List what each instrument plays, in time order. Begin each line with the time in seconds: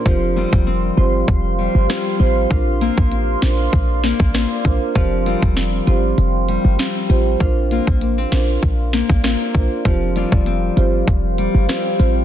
Already playing: nylon-string guitar A#3 C4, ambient pad F5 C6
0.06 808-style bass F1, nylon-string guitar F3 F4, marimba C4 F4 G4 C5, ambient pad G4 C5, kick
0.36 nylon-string guitar G3 C4 F4
0.53 808-style bass F1, kick
0.67 nylon-string guitar C4
0.97 808-style bass G1, marimba C4 F4 G4 C5
1.28 808-style bass F1, kick
1.59 nylon-string guitar G3
1.75 808-style bass G1
1.89 nylon-string guitar G3 C4 F4, cross-stick, snare
2.20 808-style bass A1, marimba C4 F4 G4 C5
2.50 808-style bass A#1, marimba D4 F4 A#4 C5, nylon-string guitar F4, ambient pad A#4 D5, kick, closed hi-hat
2.81 nylon-string guitar A#3 C4 F4, closed hi-hat
2.98 808-style bass A1, kick
3.12 nylon-string guitar C4, closed hi-hat
3.42 808-style bass A#1, marimba D4 F4 A#4 C5, snare, closed hi-hat
3.73 808-style bass A#1, kick, closed hi-hat
4.04 nylon-string guitar A#3, snare, closed hi-hat
4.20 808-style bass A1, kick
4.34 nylon-string guitar A#3 C4 F4, cross-stick, snare, closed hi-hat
4.65 808-style bass A#1, marimba D4 F4 A#4 C5, kick, closed hi-hat
4.95 808-style bass F1, nylon-string guitar F3 F4, marimba C4 F4 G4 C5, ambient pad G4 C5, kick, closed hi-hat
5.26 nylon-string guitar G3 C4 F4, closed hi-hat
5.42 808-style bass F1, kick
5.57 nylon-string guitar C4, snare, closed hi-hat
5.87 808-style bass G1, marimba C4 F4 G4 C5, closed hi-hat
6.18 808-style bass F1, closed hi-hat
6.49 nylon-string guitar G3, closed hi-hat
6.65 808-style bass G1
6.79 nylon-string guitar G3 C4 F4, snare, closed hi-hat
7.10 808-style bass A1, marimba C4 F4 G4 C5, closed hi-hat
7.40 808-style bass A#1, marimba D4 F4 A#4 C5, nylon-string guitar F4, ambient pad A#4 D5 F5, kick, closed hi-hat
7.71 nylon-string guitar A#3 C4 F4, closed hi-hat
7.87 808-style bass A1, kick
8.01 nylon-string guitar A#3, closed hi-hat
8.18 nylon-string guitar C4
8.32 808-style bass A#1, marimba D4 F4 A#4 C5, snare, closed hi-hat
8.63 808-style bass A#1, kick, closed hi-hat
8.93 nylon-string guitar A#3, snare, closed hi-hat
9.10 808-style bass A1, kick
9.24 nylon-string guitar A#3 C4 F4, cross-stick, snare, closed hi-hat
9.54 808-style bass A#1, marimba D4 F4 A#4 C5, kick, closed hi-hat
9.85 808-style bass F1, nylon-string guitar F3 F4, marimba C4 F4 G4 C5, ambient pad G4 C5 F5, kick, closed hi-hat
10.16 nylon-string guitar G3 C4 F4, closed hi-hat
10.32 808-style bass F1, kick
10.46 nylon-string guitar C4, closed hi-hat
10.77 808-style bass G1, marimba C4 F4 G4 C5, closed hi-hat
11.08 808-style bass F1, kick, closed hi-hat
11.38 nylon-string guitar G3, closed hi-hat
11.55 808-style bass G1
11.69 nylon-string guitar G3 C4 F4, cross-stick, snare, closed hi-hat
11.99 808-style bass A1, marimba C4 F4 G4 C5, closed hi-hat